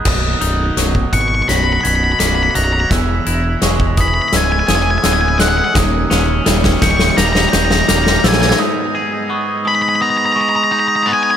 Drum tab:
CC |x-------------------------------|--------------------------------|--------------------------------|--------------------------------|
HH |----x---x---x---x---x---x---x---|x---x---x---x---x---x---x---x---|x---x---x---x---x---x---x---x---|--------------------------------|
SD |o-------o-------o-------o-------|o-------o-------o---o---o---o---|o---o---o-o-o-o-o-o-o-o-o-o-oooo|--------------------------------|
BD |o---------o-o-------------------|o---------o-o-------------------|o---------o-o-------------------|--------------------------------|